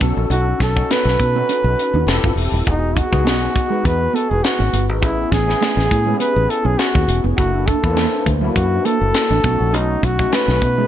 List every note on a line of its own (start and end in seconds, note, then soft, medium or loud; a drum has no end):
0.00 0.13 B1 medium
0.00 0.14 B3 medium
0.00 0.61 C#4 medium
0.00 0.61 D#4 medium
0.00 0.61 F#4 medium
0.00 0.61 A4 medium
0.00 kick loud
0.00 closed hi-hat medium
0.17 0.27 A#1 medium
0.30 0.52 B1 loud
0.30 0.44 D#4 medium
0.30 0.64 F#4 medium
0.30 closed hi-hat medium
0.60 0.82 B1 medium
0.60 0.73 C#4 medium
0.60 0.93 A4 medium
0.60 kick medium
0.60 snare soft
0.60 closed hi-hat medium
0.75 1.23 C#4 medium
0.75 1.23 D#4 medium
0.75 1.23 F#4 medium
0.75 1.23 A4 medium
0.75 muted clean electric guitar stroke soft
0.75 kick medium
0.90 1.03 B3 medium
0.90 2.38 B4 loud
0.90 snare medium
0.90 closed hi-hat medium
1.05 1.15 B1 medium
1.05 snare soft
1.20 1.41 B2 medium
1.20 muted clean electric guitar stroke soft
1.20 kick medium
1.20 closed hi-hat medium
1.35 1.46 B3 medium
1.35 2.07 C#4 medium
1.35 2.08 D#4 medium
1.35 2.08 F#4 medium
1.35 2.08 B4 medium
1.49 1.61 C#4 medium
1.49 closed hi-hat medium
1.64 1.74 B1 medium
1.78 muted clean electric guitar stroke soft
1.78 closed hi-hat medium
1.94 2.04 D#2 medium
1.94 2.05 D#4 medium
2.07 2.19 F1 medium
2.07 2.56 C4 medium
2.07 2.56 E4 medium
2.07 2.56 G4 medium
2.07 2.57 A4 medium
2.07 snare medium
2.07 closed hi-hat medium
2.24 2.33 G1 medium
2.24 2.35 F4 medium
2.24 kick medium
2.36 2.48 E1 medium
2.36 muted clean electric guitar stroke soft
2.36 open hi-hat medium
2.52 2.62 D#1 medium
2.52 2.64 E4 medium
2.67 3.00 E1 medium
2.67 3.03 B3 medium
2.67 3.03 D#4 medium
2.67 2.99 D#4 medium
2.67 2.79 E4 medium
2.67 3.03 F#4 medium
2.67 3.03 G#4 medium
2.67 kick loud
2.67 closed hi-hat medium
2.83 muted clean electric guitar stroke soft
2.95 3.08 D#4 medium
2.95 3.87 F#4 medium
2.95 kick medium
2.95 closed hi-hat medium
3.12 3.25 C#2 medium
3.12 3.59 B3 medium
3.12 3.59 D#4 medium
3.12 3.59 F#4 medium
3.12 3.59 G#4 medium
3.12 kick medium
3.25 3.47 B1 medium
3.25 3.37 B3 medium
3.25 snare loud
3.25 closed hi-hat medium
3.54 muted clean electric guitar stroke soft
3.54 kick medium
3.54 closed hi-hat medium
3.70 3.81 G#3 medium
3.70 4.66 B3 medium
3.70 4.66 D#4 medium
3.70 4.66 F#4 medium
3.70 4.66 B4 medium
3.85 4.06 E2 medium
3.85 4.16 B4 medium
3.85 kick medium
3.85 closed hi-hat medium
4.13 4.26 B3 medium
4.13 4.31 A4 medium
4.13 closed hi-hat medium
4.29 4.40 E1 medium
4.29 4.45 G#4 medium
4.42 4.89 F#4 medium
4.42 muted clean electric guitar stroke soft
4.42 snare medium
4.42 closed hi-hat medium
4.59 4.70 G#1 medium
4.59 4.69 C#4 medium
4.73 4.89 G1 medium
4.73 4.85 B3 medium
4.73 closed hi-hat medium
4.89 5.03 G#1 medium
5.01 5.24 A1 medium
5.01 5.38 B3 medium
5.01 5.38 C#4 medium
5.01 5.14 E4 medium
5.01 5.38 E4 medium
5.01 5.34 E4 medium
5.01 5.39 G#4 medium
5.01 kick loud
5.01 closed hi-hat medium
5.32 5.53 A1 medium
5.32 5.44 C#4 medium
5.32 6.19 G#4 medium
5.32 kick medium
5.32 snare soft
5.32 closed hi-hat medium
5.47 5.94 B3 medium
5.47 5.94 C#4 medium
5.47 5.95 E4 medium
5.47 5.95 G#4 medium
5.47 muted clean electric guitar stroke soft
5.47 snare soft
5.61 5.73 A3 medium
5.61 snare loud
5.61 closed hi-hat medium
5.77 5.87 A1 loud
5.77 snare soft
5.91 6.13 A2 loud
5.91 muted clean electric guitar stroke soft
5.91 kick medium
5.91 closed hi-hat medium
6.06 6.17 G#3 medium
6.06 7.02 B3 medium
6.06 7.02 C#4 medium
6.06 7.02 E4 medium
6.06 6.13 G4 medium
6.14 7.05 G#4 medium
6.20 6.32 B3 medium
6.20 6.51 B4 medium
6.20 closed hi-hat medium
6.36 6.46 A1 medium
6.49 6.67 A4 medium
6.49 muted clean electric guitar stroke soft
6.49 closed hi-hat medium
6.65 6.75 B1 medium
6.65 6.76 C#4 medium
6.65 6.80 G#4 medium
6.79 7.24 F#4 medium
6.79 snare medium
6.79 closed hi-hat medium
6.94 7.05 D#2 medium
6.94 7.05 C#4 medium
6.94 kick medium
7.08 7.20 E1 medium
7.08 muted clean electric guitar stroke soft
7.08 closed hi-hat medium
7.24 7.34 F1 medium
7.24 7.35 B3 medium
7.36 7.71 F#1 medium
7.36 7.74 A#3 medium
7.36 7.74 D4 medium
7.36 7.75 E4 medium
7.36 7.68 F#4 medium
7.36 7.50 F#4 medium
7.36 7.75 A4 medium
7.36 kick loud
7.36 closed hi-hat medium
7.53 muted clean electric guitar stroke soft
7.66 7.79 D4 medium
7.66 8.28 A4 medium
7.66 kick medium
7.66 closed hi-hat medium
7.83 8.05 E2 medium
7.83 8.30 A#3 medium
7.83 8.30 D4 medium
7.83 8.30 E4 medium
7.83 7.90 B4 medium
7.83 kick medium
7.90 8.34 C5 medium
7.95 8.08 A#3 medium
7.95 snare loud
7.95 closed hi-hat medium
8.25 8.48 D2 medium
8.25 muted clean electric guitar stroke soft
8.25 kick medium
8.25 closed hi-hat medium
8.41 8.52 F#3 medium
8.41 9.37 A#3 medium
8.41 9.37 D4 medium
8.41 9.38 E4 medium
8.41 9.38 F#4 medium
8.55 8.78 F#2 medium
8.55 8.87 F#4 medium
8.55 kick medium
8.55 closed hi-hat medium
8.85 8.98 A#3 medium
8.85 9.77 A4 loud
8.85 closed hi-hat medium
9.01 9.11 F#1 medium
9.14 muted clean electric guitar stroke soft
9.14 snare medium
9.14 closed hi-hat medium
9.30 9.40 A1 medium
9.30 9.41 D4 medium
9.44 9.56 B1 medium
9.44 10.04 A3 medium
9.44 9.57 B3 medium
9.44 10.05 C#4 medium
9.44 10.05 D#4 medium
9.44 10.05 F#4 medium
9.44 kick loud
9.44 closed hi-hat medium
9.61 9.74 A#1 medium
9.73 9.95 B1 medium
9.73 9.86 D#4 medium
9.73 10.07 D#4 medium
9.73 closed hi-hat medium
10.03 10.25 B1 medium
10.03 10.15 C#4 medium
10.03 10.35 F#4 medium
10.03 kick medium
10.03 closed hi-hat medium
10.19 10.66 A3 medium
10.19 10.66 C#4 medium
10.19 10.66 D#4 medium
10.19 10.67 F#4 medium
10.19 muted clean electric guitar stroke soft
10.19 kick medium
10.33 10.45 A3 medium
10.33 10.87 B4 medium
10.33 snare loud
10.33 closed hi-hat medium
10.48 10.58 B1 loud
10.48 snare soft
10.61 10.83 B2 medium
10.61 muted clean electric guitar stroke soft
10.61 kick medium
10.61 closed hi-hat medium
10.77 10.87 G#3 medium
10.77 10.87 A3 medium
10.77 10.87 C#4 medium
10.77 10.87 D#4 medium
10.77 10.87 G#4 medium